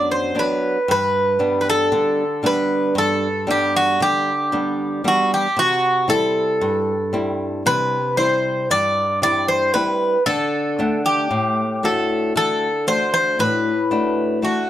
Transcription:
Already playing: nylon-string guitar F#2 F#3 B3 D4
0.11 bouzouki C5
0.35 nylon-string guitar F#3 B3 D4
0.39 bouzouki B4
0.88 nylon-string guitar G2, bouzouki B4
1.39 nylon-string guitar G3 B3 D4
1.61 bouzouki B4
1.70 bouzouki A4
1.92 nylon-string guitar D3
2.43 nylon-string guitar G3 B3 D4, bouzouki B4
2.95 nylon-string guitar G2, bouzouki A4
3.47 nylon-string guitar G3 B3 D4, bouzouki G4
3.76 bouzouki F#4
4.00 nylon-string guitar D3, bouzouki G4
4.52 nylon-string guitar G3 B3 D4
5.04 nylon-string guitar G3 B3 D4, bouzouki F#4
5.34 bouzouki G4
5.57 nylon-string guitar C3, bouzouki F#4
6.08 nylon-string guitar G3 C4 E4, bouzouki A4
6.61 nylon-string guitar G2
7.13 nylon-string guitar G3 C4 E4
7.66 nylon-string guitar C3, bouzouki B4
8.17 nylon-string guitar G3 C4 E4, bouzouki C5
8.71 nylon-string guitar G2, bouzouki D5
9.22 nylon-string guitar G3 C4 E4, bouzouki D5
9.48 bouzouki C5
9.74 nylon-string guitar G3 C4 E4, bouzouki B4
10.26 nylon-string guitar D3, bouzouki A4
10.79 nylon-string guitar A3 D4 F#5
11.06 bouzouki G4
11.31 nylon-string guitar A2
11.83 nylon-string guitar A3 D4 F#4, bouzouki A4
12.36 nylon-string guitar D3, bouzouki A4
12.87 nylon-string guitar A3 D4 F#4, bouzouki C5
13.14 bouzouki C5
13.39 nylon-string guitar A2, bouzouki B4
13.91 nylon-string guitar A3 D4 F#4
14.42 nylon-string guitar A3 D4 F#4, bouzouki F#4

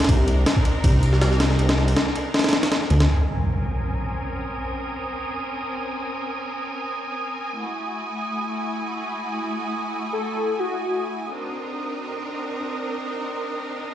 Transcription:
Already playing: string section C4 D4 D#4 A#4
0.00 snare, ride
0.05 snare, ride
0.09 detuned saw bass C2, kick, ride
0.28 ride
0.46 snare, ride
0.57 kick
0.65 ride
0.84 detuned saw bass C2, kick, ride
1.03 ride
1.13 snare
1.22 snare, ride
1.32 snare
1.40 snare, ride
1.50 snare
1.59 detuned saw bass C2, ride
1.69 snare, ride
1.78 snare
1.88 ride
1.97 snare, ride
2.07 snare
2.16 ride
2.34 snare, ride
2.39 snare, ride
2.44 snare, ride
2.49 snare, ride
2.53 snare, ride
2.63 snare, ride
2.72 snare, ride
2.82 snare
2.90 detuned saw bass D2, ride
3.00 snare, ride
3.09 string section C4 C#4 A#4 G#5, synth texture D#6, impact
7.59 string section A3 E4 F#4
10.13 digital synth lead A4
10.59 digital synth lead F#4
11.34 string section C4 D4 D#4 A#4

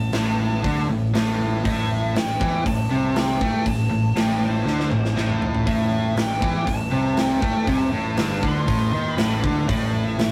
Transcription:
Already playing: picked electric bass A1, lead electric guitar A5
0.12 picked electric bass A1, overdriven electric guitar A2, snare, open hi-hat
0.64 picked electric bass D2, overdriven electric guitar D3, kick, open hi-hat
0.90 picked electric bass A1, overdriven electric guitar A2
1.14 picked electric bass A1, overdriven electric guitar A2, snare, open hi-hat
1.64 picked electric bass A1, overdriven electric guitar A2, lead electric guitar E5, kick, open hi-hat
2.16 picked electric bass A1, overdriven electric guitar A2, lead electric guitar G5, snare, open hi-hat
2.41 picked electric bass E2, overdriven electric guitar E3, kick
2.66 picked electric bass A1, overdriven electric guitar A2, lead electric guitar A5, kick, open hi-hat
2.91 picked electric bass C2, overdriven electric guitar C3
3.16 lead electric guitar G5, snare, open hi-hat
3.41 picked electric bass A2, overdriven electric guitar A3, kick
3.66 picked electric bass A1, overdriven electric guitar A2, lead electric guitar A5, kick, open hi-hat
3.89 picked electric bass A1, overdriven electric guitar A2
4.14 picked electric bass A1, overdriven electric guitar A2, snare, open hi-hat
4.19 lead electric guitar G5
4.46 lead electric guitar C5
4.65 picked electric bass D2, overdriven electric guitar D3, snare
4.80 snare
4.91 picked electric bass A1, overdriven electric guitar A2, mid tom
5.05 snare
5.16 picked electric bass A1, overdriven electric guitar A2, snare
5.30 mid tom
5.42 floor tom
5.55 floor tom
5.67 picked electric bass A1, overdriven electric guitar A2, lead electric guitar E5, kick, open hi-hat
6.16 picked electric bass A1, overdriven electric guitar A2, snare, open hi-hat
6.21 lead electric guitar G5
6.42 picked electric bass E2, overdriven electric guitar E3, kick
6.67 picked electric bass A1, overdriven electric guitar A2, lead electric guitar A5, kick, open hi-hat
6.91 picked electric bass C2, overdriven electric guitar C3
7.17 lead electric guitar G5, snare, open hi-hat
7.41 picked electric bass A2, overdriven electric guitar A3, kick
7.67 picked electric bass C2, overdriven electric guitar C3, lead electric guitar A5, kick, open hi-hat
7.93 picked electric bass A1, overdriven electric guitar A2
8.17 picked electric bass G1, overdriven electric guitar G2, lead electric guitar A5, snare, open hi-hat
8.42 picked electric bass D2, overdriven electric guitar D3, kick
8.47 lead electric guitar C6
8.68 picked electric bass A1, overdriven electric guitar A2, kick, open hi-hat
8.93 picked electric bass D#2, overdriven electric guitar D#3
9.10 lead electric guitar B5
9.17 picked electric bass A1, overdriven electric guitar A2, snare, open hi-hat
9.43 picked electric bass D2, overdriven electric guitar D3, kick
9.68 picked electric bass A1, overdriven electric guitar A2, lead electric guitar D5, kick, open hi-hat
10.05 lead electric guitar E5
10.19 picked electric bass A1, overdriven electric guitar A2, snare, open hi-hat

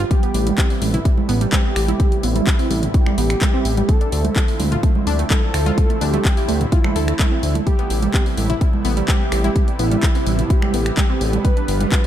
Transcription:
Already playing: analog synth pad G3 B3
0.11 analog synth pad C3 A3 E4, synth pluck G3, analog synth lead G4, kick, closed hi-hat
0.23 synth pluck B3, closed hi-hat
0.34 analog synth bass A1, open hi-hat
0.47 synth pluck G3, closed hi-hat, high conga
0.58 synth pluck C4, kick, clap, closed hi-hat
0.70 synth pluck G3, open hi-hat
0.82 analog synth bass A1, open hi-hat, high conga
0.94 synth pluck E4, closed hi-hat, mid tom
1.05 synth pluck G3, kick, closed hi-hat
1.17 high conga
1.29 analog synth bass A1, synth pluck B3, open hi-hat
1.41 synth pluck G3, closed hi-hat
1.52 synth pluck C4, analog synth lead G4, kick, clap, closed hi-hat, high conga
1.76 analog synth bass A1, synth pluck G4, finger snap, open hi-hat
1.88 synth pluck E4, closed hi-hat, high conga
2.00 kick, closed hi-hat
2.12 synth pluck G3, closed hi-hat
2.23 analog synth bass A1, synth pluck B3, analog synth lead E4, open hi-hat
2.36 synth pluck G3, closed hi-hat, high conga
2.47 kick, clap, closed hi-hat
2.59 synth pluck C4, open hi-hat
2.71 analog synth bass A1, synth pluck G3, open hi-hat
2.83 closed hi-hat, mid tom
2.94 synth pluck E4, analog synth lead G4, kick, closed hi-hat
3.06 synth pluck G3, finger snap, high conga
3.18 analog synth bass A1, synth pluck B3, open hi-hat
3.30 finger snap, closed hi-hat
3.41 synth pluck G3, kick, clap, closed hi-hat, high conga
3.54 synth pluck C4
3.65 analog synth bass A1, open hi-hat
3.77 synth pluck G3, closed hi-hat, high conga
3.89 analog synth pad D3 F3 C4, synth pluck A3, analog synth lead A4, kick, closed hi-hat
4.01 synth pluck D4, closed hi-hat
4.12 analog synth bass D2, open hi-hat
4.25 synth pluck A3, closed hi-hat, high conga
4.36 synth pluck E4, kick, clap, closed hi-hat
4.48 synth pluck A3, open hi-hat
4.60 analog synth bass D2, open hi-hat, high conga
4.72 synth pluck F4, closed hi-hat, mid tom
4.83 synth pluck A3, kick, closed hi-hat
4.95 high conga
5.07 analog synth bass D2, synth pluck D4, open hi-hat
5.19 synth pluck A3, closed hi-hat
5.30 synth pluck E4, analog synth lead A4, kick, clap, closed hi-hat, high conga
5.54 analog synth bass D2, synth pluck A4, finger snap, open hi-hat
5.66 synth pluck F4, closed hi-hat, high conga
5.78 kick, closed hi-hat
5.90 synth pluck A3, closed hi-hat
6.01 analog synth bass D2, synth pluck D4, analog synth lead G4, open hi-hat
6.14 synth pluck A3, closed hi-hat, high conga
6.25 kick, clap, closed hi-hat
6.37 synth pluck E4, open hi-hat
6.49 analog synth bass D2, synth pluck A3, open hi-hat
6.61 closed hi-hat, mid tom
6.72 analog synth lead E4, synth pluck F4, kick, closed hi-hat
6.84 synth pluck A3, finger snap, high conga
6.96 analog synth bass D2, synth pluck A4, open hi-hat
7.08 synth pluck A3, finger snap, closed hi-hat
7.19 synth pluck A3, kick, clap, closed hi-hat, high conga
7.32 synth pluck C4
7.43 analog synth bass D2, open hi-hat
7.55 synth pluck A3, closed hi-hat, high conga
7.67 analog synth pad C3 G3 B3, synth pluck G3, analog synth lead G4, kick, closed hi-hat
7.79 synth pluck B3, closed hi-hat
7.90 analog synth bass A1, open hi-hat
8.02 synth pluck G3, closed hi-hat, high conga
8.14 synth pluck C4, kick, clap, closed hi-hat
8.26 synth pluck G3, open hi-hat
8.37 analog synth bass A1, open hi-hat, high conga
8.50 synth pluck E4, closed hi-hat, mid tom
8.61 synth pluck G3, kick, closed hi-hat
8.73 high conga
8.85 analog synth bass A1, synth pluck B3, open hi-hat
8.97 synth pluck G3, closed hi-hat
9.08 synth pluck C4, analog synth lead G4, kick, clap, closed hi-hat, high conga
9.32 analog synth bass A1, synth pluck G4, finger snap, open hi-hat
9.44 synth pluck E4, closed hi-hat, high conga
9.56 kick, closed hi-hat
9.68 synth pluck G3, closed hi-hat
9.79 analog synth bass A1, synth pluck B3, analog synth lead E4, open hi-hat
9.92 synth pluck G3, closed hi-hat, high conga
10.03 kick, clap, closed hi-hat
10.15 synth pluck C4, open hi-hat
10.27 analog synth bass A1, synth pluck G3, open hi-hat
10.39 closed hi-hat, mid tom
10.50 synth pluck E4, analog synth lead G4, kick, closed hi-hat
10.62 synth pluck G3, finger snap, high conga
10.74 analog synth bass A1, synth pluck B3, open hi-hat
10.86 finger snap, closed hi-hat
10.97 synth pluck G3, kick, clap, closed hi-hat, high conga
11.10 synth pluck C4
11.21 analog synth bass A1, open hi-hat
11.33 synth pluck G3, closed hi-hat, high conga
11.45 analog synth pad D3 F3 G3 F4, synth pluck G3, analog synth lead B4, kick, closed hi-hat
11.57 synth pluck D4, closed hi-hat
11.68 analog synth bass G1, open hi-hat
11.80 synth pluck G3, closed hi-hat, high conga
11.92 synth pluck F4, kick, clap, closed hi-hat

